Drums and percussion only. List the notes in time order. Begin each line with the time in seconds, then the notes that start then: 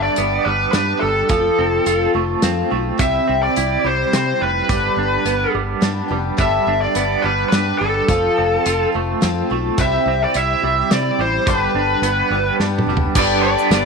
0.16 closed hi-hat
0.73 snare, closed hi-hat
1.29 kick, closed hi-hat
1.86 closed hi-hat
2.42 snare, closed hi-hat
2.99 kick, closed hi-hat
3.56 closed hi-hat
4.13 snare, closed hi-hat
4.69 kick, closed hi-hat
5.26 closed hi-hat
5.82 snare, closed hi-hat
6.38 kick, closed hi-hat
6.95 closed hi-hat
7.52 snare, closed hi-hat
8.09 kick, closed hi-hat
8.66 closed hi-hat
9.22 snare, closed hi-hat
9.78 kick, closed hi-hat
10.34 closed hi-hat
10.91 snare, closed hi-hat
11.47 kick, closed hi-hat
12.03 closed hi-hat
12.60 snare
12.78 mid tom
12.97 floor tom
13.15 kick, crash, shaker
13.59 shaker
13.71 snare, closed hi-hat, shaker